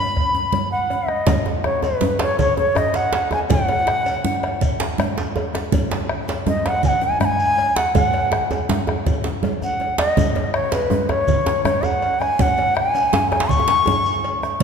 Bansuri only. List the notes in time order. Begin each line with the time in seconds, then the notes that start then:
Already playing: B5
0.72 F#5
1.09 D#5
1.64 C#5
1.84 B4
2.23 C#5
2.40 C#5
2.58 C#5
2.77 D#5
2.96 F#5
3.34 G#5
3.51 F#5
6.48 D#5
6.67 F#5
6.85 F#5 G#5
7.04 G#5
7.21 B5
7.25 G#5
7.76 F#5
7.96 F#5
9.63 F#5
9.99 D#5
10.54 C#5
10.72 B4
11.09 C#5
11.64 C#5
11.83 F#5
12.20 G#5
12.39 F#5 G#5
12.76 G#5
13.30 G#5
13.49 C#6